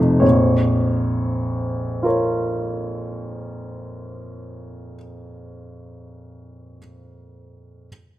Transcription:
0, 0, Header, 1, 2, 480
1, 0, Start_track
1, 0, Key_signature, -5, "minor"
1, 0, Tempo, 500000
1, 7860, End_track
2, 0, Start_track
2, 0, Title_t, "Grand piano"
2, 0, Program_c, 0, 0
2, 0, Control_c, 0, 64, 127
2, 0, Note_on_c, 0, 41, 41
2, 0, Note_on_c, 0, 48, 27
2, 0, Note_on_c, 0, 53, 26
2, 0, Note_on_c, 0, 57, 28
2, 0, Note_on_c, 0, 63, 29
2, 0, Note_on_c, 0, 72, 48
2, 191, Note_on_c, 0, 73, 43
2, 194, Note_off_c, 0, 41, 0
2, 208, Note_on_c, 0, 41, 37
2, 209, Note_on_c, 0, 34, 35
2, 214, Note_off_c, 0, 48, 0
2, 218, Note_off_c, 0, 72, 0
2, 244, Control_c, 0, 64, 0
2, 245, Note_off_c, 0, 63, 0
2, 246, Note_off_c, 0, 53, 0
2, 250, Note_off_c, 0, 57, 0
2, 524, Control_c, 0, 64, 127
2, 1946, Note_on_c, 0, 65, 29
2, 1964, Note_on_c, 0, 70, 31
2, 1968, Note_off_c, 0, 73, 0
2, 1982, Note_on_c, 0, 73, 31
2, 4752, Note_off_c, 0, 41, 0
2, 4753, Note_off_c, 0, 34, 0
2, 6490, Note_off_c, 0, 65, 0
2, 6507, Note_off_c, 0, 70, 0
2, 6526, Note_off_c, 0, 73, 0
2, 7572, Control_c, 0, 64, 0
2, 7860, End_track
0, 0, End_of_file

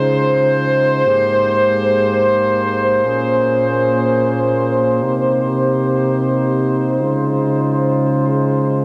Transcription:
0, 0, Header, 1, 2, 480
1, 0, Start_track
1, 0, Tempo, 500000
1, 8494, End_track
2, 0, Start_track
2, 0, Title_t, "Brass ensemble"
2, 0, Program_c, 0, 61
2, 0, Note_on_c, 0, 49, 80
2, 0, Note_on_c, 0, 56, 75
2, 0, Note_on_c, 0, 63, 74
2, 0, Note_on_c, 0, 65, 73
2, 0, Note_on_c, 0, 72, 88
2, 979, Note_off_c, 0, 63, 0
2, 998, Note_off_c, 0, 49, 0
2, 998, Note_off_c, 0, 56, 0
2, 998, Note_off_c, 0, 65, 0
2, 1016, Note_on_c, 0, 58, 73
2, 1017, Note_on_c, 0, 44, 78
2, 1017, Note_on_c, 0, 67, 70
2, 1018, Note_on_c, 0, 56, 75
2, 2902, Note_off_c, 0, 44, 0
2, 2902, Note_off_c, 0, 56, 0
2, 2902, Note_off_c, 0, 67, 0
2, 2922, Note_on_c, 0, 46, 80
2, 2922, Note_on_c, 0, 61, 75
2, 2922, Note_on_c, 0, 68, 71
2, 4806, Note_off_c, 0, 68, 0
2, 4807, Note_off_c, 0, 46, 0
2, 4807, Note_off_c, 0, 61, 0
2, 4826, Note_on_c, 0, 63, 74
2, 4826, Note_on_c, 0, 67, 70
2, 4827, Note_on_c, 0, 48, 81
2, 6690, Note_off_c, 0, 58, 0
2, 6710, Note_off_c, 0, 67, 0
2, 6711, Note_off_c, 0, 48, 0
2, 6729, Note_on_c, 0, 49, 80
2, 6730, Note_on_c, 0, 56, 74
2, 6730, Note_on_c, 0, 65, 73
2, 8494, Note_off_c, 0, 49, 0
2, 8494, Note_off_c, 0, 56, 0
2, 8494, Note_off_c, 0, 63, 0
2, 8494, Note_off_c, 0, 65, 0
2, 8494, Note_off_c, 0, 72, 0
2, 8494, End_track
0, 0, End_of_file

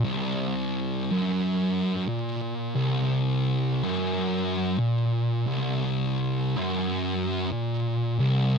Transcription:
0, 0, Header, 1, 2, 480
1, 0, Start_track
1, 0, Tempo, 680272
1, 28, Time_signature, 4, 2, 24, 8
1, 6054, End_track
2, 0, Start_track
2, 0, Title_t, "Distorted electric guitar"
2, 0, Program_c, 0, 30
2, 30, Note_on_c, 0, 36, 110
2, 783, Note_off_c, 0, 36, 0
2, 788, Note_on_c, 0, 42, 94
2, 1455, Note_off_c, 0, 42, 0
2, 1468, Note_on_c, 0, 46, 123
2, 1938, Note_off_c, 0, 46, 0
2, 1945, Note_on_c, 0, 36, 103
2, 2704, Note_off_c, 0, 36, 0
2, 2704, Note_on_c, 0, 42, 97
2, 3374, Note_off_c, 0, 42, 0
2, 3381, Note_on_c, 0, 46, 112
2, 3856, Note_off_c, 0, 46, 0
2, 3860, Note_on_c, 0, 36, 106
2, 4633, Note_off_c, 0, 36, 0
2, 4633, Note_on_c, 0, 42, 89
2, 5301, Note_off_c, 0, 42, 0
2, 5306, Note_on_c, 0, 46, 113
2, 5782, Note_off_c, 0, 46, 0
2, 5789, Note_on_c, 0, 36, 117
2, 6054, Note_off_c, 0, 36, 0
2, 6054, End_track
0, 0, End_of_file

